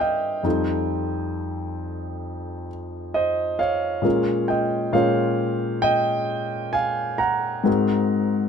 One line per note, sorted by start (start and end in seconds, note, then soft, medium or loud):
0.00 0.39 G2 soft
0.00 0.39 G3 soft
0.00 0.40 D4 soft
0.00 0.40 F4 soft
0.00 0.47 C5 medium
0.00 0.48 D5 soft
0.00 2.67 D#5 soft
0.00 0.48 E5 medium
0.00 0.47 F5 medium
0.00 2.70 G5 medium
0.43 4.00 F2 soft
0.43 4.00 G3 soft
0.43 4.01 D#4 soft
0.43 4.01 F4 soft
0.43 4.01 A4 soft
3.14 3.58 C5 soft
3.14 3.60 D#5 medium
3.59 4.46 C#5 soft
3.59 4.50 F5 medium
4.02 4.91 A#2 soft
4.02 4.92 G#3 soft
4.02 4.92 C#4 soft
4.02 4.93 F4 soft
4.02 4.93 A#4 soft
4.48 4.92 D#5 soft
4.48 4.95 G5 medium
4.93 7.61 A#2 soft
4.93 7.61 G#3 soft
4.93 7.61 C#4 soft
4.93 7.62 F4 soft
4.93 7.62 A#4 soft
4.93 5.80 C#5 soft
4.93 5.84 F5 medium
5.82 6.71 D#5 medium
5.82 6.74 G5 medium
6.73 7.17 F5 medium
6.73 7.20 G#5 medium
7.18 8.49 F#5 medium
7.18 8.49 A#5 medium
7.64 8.49 G#2 soft
7.64 8.49 G#3 soft
7.64 8.49 C4 soft
7.64 8.49 F#4 soft
7.64 8.49 A#4 soft